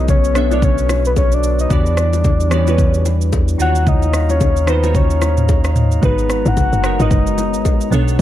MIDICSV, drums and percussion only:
0, 0, Header, 1, 2, 480
1, 0, Start_track
1, 0, Tempo, 540541
1, 1514, Time_signature, 4, 2, 24, 8
1, 7298, End_track
2, 0, Start_track
2, 0, Title_t, "Drums"
2, 74, Note_on_c, 9, 36, 98
2, 74, Note_on_c, 9, 82, 69
2, 75, Note_on_c, 9, 60, 69
2, 75, Note_on_c, 9, 64, 72
2, 163, Note_off_c, 9, 36, 0
2, 163, Note_off_c, 9, 82, 0
2, 164, Note_off_c, 9, 60, 0
2, 164, Note_off_c, 9, 64, 0
2, 216, Note_on_c, 9, 82, 57
2, 305, Note_off_c, 9, 82, 0
2, 313, Note_on_c, 9, 37, 92
2, 315, Note_on_c, 9, 82, 74
2, 401, Note_off_c, 9, 37, 0
2, 404, Note_off_c, 9, 82, 0
2, 456, Note_on_c, 9, 82, 49
2, 457, Note_on_c, 9, 61, 77
2, 545, Note_off_c, 9, 61, 0
2, 545, Note_off_c, 9, 82, 0
2, 551, Note_on_c, 9, 64, 64
2, 554, Note_on_c, 9, 36, 112
2, 555, Note_on_c, 9, 82, 70
2, 640, Note_off_c, 9, 64, 0
2, 643, Note_off_c, 9, 36, 0
2, 644, Note_off_c, 9, 82, 0
2, 693, Note_on_c, 9, 82, 59
2, 781, Note_off_c, 9, 82, 0
2, 793, Note_on_c, 9, 37, 83
2, 793, Note_on_c, 9, 61, 73
2, 794, Note_on_c, 9, 82, 88
2, 882, Note_off_c, 9, 37, 0
2, 882, Note_off_c, 9, 61, 0
2, 883, Note_off_c, 9, 82, 0
2, 932, Note_on_c, 9, 82, 54
2, 1021, Note_off_c, 9, 82, 0
2, 1033, Note_on_c, 9, 60, 71
2, 1035, Note_on_c, 9, 36, 108
2, 1035, Note_on_c, 9, 82, 82
2, 1122, Note_off_c, 9, 60, 0
2, 1123, Note_off_c, 9, 36, 0
2, 1123, Note_off_c, 9, 82, 0
2, 1171, Note_on_c, 9, 82, 64
2, 1260, Note_off_c, 9, 82, 0
2, 1274, Note_on_c, 9, 82, 85
2, 1363, Note_off_c, 9, 82, 0
2, 1413, Note_on_c, 9, 82, 51
2, 1502, Note_off_c, 9, 82, 0
2, 1514, Note_on_c, 9, 36, 113
2, 1514, Note_on_c, 9, 82, 69
2, 1516, Note_on_c, 9, 64, 74
2, 1603, Note_off_c, 9, 36, 0
2, 1603, Note_off_c, 9, 82, 0
2, 1605, Note_off_c, 9, 64, 0
2, 1653, Note_on_c, 9, 82, 49
2, 1742, Note_off_c, 9, 82, 0
2, 1751, Note_on_c, 9, 37, 86
2, 1753, Note_on_c, 9, 82, 94
2, 1840, Note_off_c, 9, 37, 0
2, 1842, Note_off_c, 9, 82, 0
2, 1893, Note_on_c, 9, 82, 51
2, 1895, Note_on_c, 9, 61, 67
2, 1982, Note_off_c, 9, 82, 0
2, 1984, Note_off_c, 9, 61, 0
2, 1992, Note_on_c, 9, 82, 71
2, 1993, Note_on_c, 9, 36, 93
2, 1996, Note_on_c, 9, 60, 68
2, 1996, Note_on_c, 9, 64, 73
2, 2081, Note_off_c, 9, 82, 0
2, 2082, Note_off_c, 9, 36, 0
2, 2085, Note_off_c, 9, 60, 0
2, 2085, Note_off_c, 9, 64, 0
2, 2134, Note_on_c, 9, 82, 57
2, 2223, Note_off_c, 9, 82, 0
2, 2230, Note_on_c, 9, 37, 96
2, 2232, Note_on_c, 9, 82, 78
2, 2318, Note_off_c, 9, 37, 0
2, 2321, Note_off_c, 9, 82, 0
2, 2373, Note_on_c, 9, 82, 52
2, 2376, Note_on_c, 9, 61, 77
2, 2462, Note_off_c, 9, 82, 0
2, 2465, Note_off_c, 9, 61, 0
2, 2471, Note_on_c, 9, 64, 67
2, 2473, Note_on_c, 9, 36, 111
2, 2474, Note_on_c, 9, 82, 73
2, 2560, Note_off_c, 9, 64, 0
2, 2562, Note_off_c, 9, 36, 0
2, 2563, Note_off_c, 9, 82, 0
2, 2611, Note_on_c, 9, 82, 59
2, 2700, Note_off_c, 9, 82, 0
2, 2714, Note_on_c, 9, 61, 75
2, 2714, Note_on_c, 9, 82, 93
2, 2802, Note_off_c, 9, 61, 0
2, 2802, Note_off_c, 9, 82, 0
2, 2853, Note_on_c, 9, 82, 55
2, 2942, Note_off_c, 9, 82, 0
2, 2954, Note_on_c, 9, 82, 87
2, 2955, Note_on_c, 9, 36, 103
2, 2955, Note_on_c, 9, 60, 74
2, 3043, Note_off_c, 9, 36, 0
2, 3043, Note_off_c, 9, 60, 0
2, 3043, Note_off_c, 9, 82, 0
2, 3092, Note_on_c, 9, 82, 59
2, 3181, Note_off_c, 9, 82, 0
2, 3195, Note_on_c, 9, 82, 86
2, 3284, Note_off_c, 9, 82, 0
2, 3333, Note_on_c, 9, 82, 53
2, 3422, Note_off_c, 9, 82, 0
2, 3434, Note_on_c, 9, 36, 114
2, 3435, Note_on_c, 9, 64, 78
2, 3435, Note_on_c, 9, 82, 67
2, 3523, Note_off_c, 9, 36, 0
2, 3524, Note_off_c, 9, 64, 0
2, 3524, Note_off_c, 9, 82, 0
2, 3572, Note_on_c, 9, 61, 49
2, 3573, Note_on_c, 9, 82, 46
2, 3661, Note_off_c, 9, 61, 0
2, 3662, Note_off_c, 9, 82, 0
2, 3672, Note_on_c, 9, 37, 87
2, 3674, Note_on_c, 9, 82, 99
2, 3761, Note_off_c, 9, 37, 0
2, 3763, Note_off_c, 9, 82, 0
2, 3813, Note_on_c, 9, 82, 50
2, 3815, Note_on_c, 9, 61, 68
2, 3902, Note_off_c, 9, 82, 0
2, 3904, Note_off_c, 9, 61, 0
2, 3913, Note_on_c, 9, 36, 100
2, 3913, Note_on_c, 9, 82, 71
2, 3916, Note_on_c, 9, 60, 73
2, 3916, Note_on_c, 9, 64, 70
2, 4001, Note_off_c, 9, 82, 0
2, 4002, Note_off_c, 9, 36, 0
2, 4005, Note_off_c, 9, 60, 0
2, 4005, Note_off_c, 9, 64, 0
2, 4054, Note_on_c, 9, 82, 57
2, 4143, Note_off_c, 9, 82, 0
2, 4150, Note_on_c, 9, 37, 99
2, 4153, Note_on_c, 9, 82, 74
2, 4239, Note_off_c, 9, 37, 0
2, 4241, Note_off_c, 9, 82, 0
2, 4293, Note_on_c, 9, 82, 49
2, 4295, Note_on_c, 9, 61, 78
2, 4381, Note_off_c, 9, 82, 0
2, 4383, Note_off_c, 9, 61, 0
2, 4392, Note_on_c, 9, 64, 65
2, 4393, Note_on_c, 9, 36, 111
2, 4394, Note_on_c, 9, 82, 75
2, 4481, Note_off_c, 9, 64, 0
2, 4482, Note_off_c, 9, 36, 0
2, 4482, Note_off_c, 9, 82, 0
2, 4532, Note_on_c, 9, 82, 60
2, 4621, Note_off_c, 9, 82, 0
2, 4632, Note_on_c, 9, 37, 80
2, 4632, Note_on_c, 9, 61, 76
2, 4633, Note_on_c, 9, 82, 91
2, 4721, Note_off_c, 9, 37, 0
2, 4721, Note_off_c, 9, 61, 0
2, 4722, Note_off_c, 9, 82, 0
2, 4772, Note_on_c, 9, 82, 57
2, 4774, Note_on_c, 9, 45, 64
2, 4861, Note_off_c, 9, 82, 0
2, 4863, Note_off_c, 9, 45, 0
2, 4873, Note_on_c, 9, 82, 87
2, 4874, Note_on_c, 9, 36, 110
2, 4874, Note_on_c, 9, 60, 74
2, 4961, Note_off_c, 9, 82, 0
2, 4963, Note_off_c, 9, 36, 0
2, 4963, Note_off_c, 9, 60, 0
2, 5011, Note_on_c, 9, 82, 61
2, 5014, Note_on_c, 9, 37, 86
2, 5100, Note_off_c, 9, 82, 0
2, 5103, Note_off_c, 9, 37, 0
2, 5112, Note_on_c, 9, 45, 98
2, 5113, Note_on_c, 9, 82, 82
2, 5201, Note_off_c, 9, 45, 0
2, 5202, Note_off_c, 9, 82, 0
2, 5253, Note_on_c, 9, 82, 52
2, 5342, Note_off_c, 9, 82, 0
2, 5353, Note_on_c, 9, 36, 115
2, 5354, Note_on_c, 9, 82, 70
2, 5355, Note_on_c, 9, 64, 76
2, 5442, Note_off_c, 9, 36, 0
2, 5442, Note_off_c, 9, 82, 0
2, 5444, Note_off_c, 9, 64, 0
2, 5492, Note_on_c, 9, 82, 49
2, 5581, Note_off_c, 9, 82, 0
2, 5591, Note_on_c, 9, 37, 89
2, 5593, Note_on_c, 9, 82, 94
2, 5680, Note_off_c, 9, 37, 0
2, 5682, Note_off_c, 9, 82, 0
2, 5733, Note_on_c, 9, 82, 50
2, 5734, Note_on_c, 9, 61, 69
2, 5822, Note_off_c, 9, 82, 0
2, 5823, Note_off_c, 9, 61, 0
2, 5833, Note_on_c, 9, 36, 95
2, 5833, Note_on_c, 9, 82, 70
2, 5834, Note_on_c, 9, 60, 70
2, 5834, Note_on_c, 9, 64, 70
2, 5922, Note_off_c, 9, 36, 0
2, 5922, Note_off_c, 9, 82, 0
2, 5923, Note_off_c, 9, 60, 0
2, 5923, Note_off_c, 9, 64, 0
2, 5974, Note_on_c, 9, 82, 55
2, 6063, Note_off_c, 9, 82, 0
2, 6071, Note_on_c, 9, 37, 101
2, 6074, Note_on_c, 9, 82, 72
2, 6160, Note_off_c, 9, 37, 0
2, 6162, Note_off_c, 9, 82, 0
2, 6214, Note_on_c, 9, 61, 76
2, 6214, Note_on_c, 9, 82, 51
2, 6302, Note_off_c, 9, 61, 0
2, 6303, Note_off_c, 9, 82, 0
2, 6309, Note_on_c, 9, 64, 68
2, 6313, Note_on_c, 9, 36, 115
2, 6314, Note_on_c, 9, 82, 75
2, 6398, Note_off_c, 9, 64, 0
2, 6402, Note_off_c, 9, 36, 0
2, 6403, Note_off_c, 9, 82, 0
2, 6453, Note_on_c, 9, 82, 59
2, 6542, Note_off_c, 9, 82, 0
2, 6553, Note_on_c, 9, 61, 72
2, 6555, Note_on_c, 9, 82, 95
2, 6641, Note_off_c, 9, 61, 0
2, 6644, Note_off_c, 9, 82, 0
2, 6693, Note_on_c, 9, 82, 58
2, 6782, Note_off_c, 9, 82, 0
2, 6794, Note_on_c, 9, 60, 76
2, 6795, Note_on_c, 9, 36, 105
2, 6796, Note_on_c, 9, 82, 84
2, 6882, Note_off_c, 9, 60, 0
2, 6884, Note_off_c, 9, 36, 0
2, 6885, Note_off_c, 9, 82, 0
2, 6934, Note_on_c, 9, 82, 61
2, 7023, Note_off_c, 9, 82, 0
2, 7036, Note_on_c, 9, 82, 84
2, 7125, Note_off_c, 9, 82, 0
2, 7175, Note_on_c, 9, 82, 50
2, 7264, Note_off_c, 9, 82, 0
2, 7298, End_track
0, 0, End_of_file